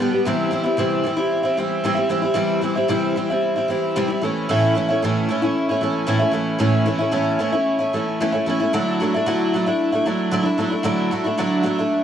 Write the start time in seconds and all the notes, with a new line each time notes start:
0.00 D3 G3 B3 G4
0.11 G3 B3 G4
0.25 C3 E3 G3 C4 E4
0.51 E3 G3 C4 E4
0.64 G3 C4 E4
0.77 C3 E3 G3 C4 E4
1.03 E3 G3 C4 E4
1.16 G3 C4 E4
1.43 G3 C4 E4
1.57 E3 G3 C4 E4
1.84 C3 E3 G3 C4 E4
1.95 G3 C4 E4
2.09 E3 G3 C4 E4
2.22 G3 C4 E4
2.34 C3 E3 G3 C4 E4
2.61 E3 G3 C4 E4
2.76 G3 C4 E4
2.88 C3 E3 G3 C4 E4
3.16 E3 G3 C4 E4
3.30 G3 C4 E4
3.56 G3 C4 E4
3.68 E3 G3 C4 E4
3.96 C3 E3 G3 C4 E4
4.08 G3 C4 E4
4.21 E3 A3 C#4 E4
4.49 A2 E3 A3 C#4 E4
4.75 E3 A3 C#4 E4
4.88 A3 C#4 E4
5.02 A2 E3 A3 C#4 E4
5.29 E3 A3 C#4 E4
5.42 A3 C#4 E4
5.69 A3 C#4 E4
5.81 E3 A3 C#4 E4
6.07 A2 E3 A3 C#4 E4
6.19 A3 C#4 E4
6.32 E3 A3 C#4 E4
6.59 A2 E3 A3 C#4 E4
6.86 E3 A3 C#4 E4
6.99 A3 C#4 E4
7.12 A2 E3 A3 C#4 E4
7.39 E3 A3 C#4 E4
7.53 A3 C#4 E4
7.79 A3 C#4 E4
7.93 E3 A3 C#4 E4
8.20 A2 E3 A3 C#4 E4
8.32 A3 C#4 E4
8.46 E3 A3 C#4 E4
8.60 A3 C#4 E4
8.73 D3 F#3 A3 D4 E4
9.00 F#3 A3 D4 E4
9.14 A3 D4 E4
9.26 D3 F#3 A3 D4 E4
9.54 F#3 A3 D4 E4
9.66 A3 D4 E4
9.92 A3 D4 E4
10.06 F#3 A3 D4 E4
10.31 D3 F#3 A3 D4 E4
10.43 A3 D4 E4
10.58 F#3 A3 D4 E4
10.70 A3 D4 E4
10.83 D3 F#3 A3 D4 E4
11.11 F#3 A3 D4 E4
11.24 A3 D4 E4
11.38 D3 F#3 A3 D4 E4
11.63 F#3 A3 D4 E4
11.78 A3 D4 E4